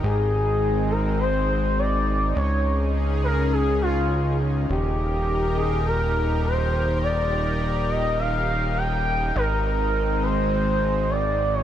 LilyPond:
<<
  \new Staff \with { instrumentName = "Analog synth lead" } { \time 4/4 \key ees \major \tempo 4 = 103 aes'4. bes'8 c''4 d''4 | des''4 r8 bes'8 aes'8 f'4 r8 | g'4. aes'8 bes'4 c''4 | d''4. ees''8 f''4 g''4 |
bes'4. c''4. d''8. des''16 | }
  \new Staff \with { instrumentName = "Analog synth pad" } { \time 4/4 \key ees \major <aes c' ees'>1 | <des des' aes'>1 | <ees ees' g' bes'>1~ | <ees ees' g' bes'>1 |
<aes c'>1 | }
  \new Staff \with { instrumentName = "Analog synth bass" } { \clef bass \time 4/4 \key ees \major aes,,1 | des,1 | ees,,1~ | ees,,1 |
aes,,1 | }
>>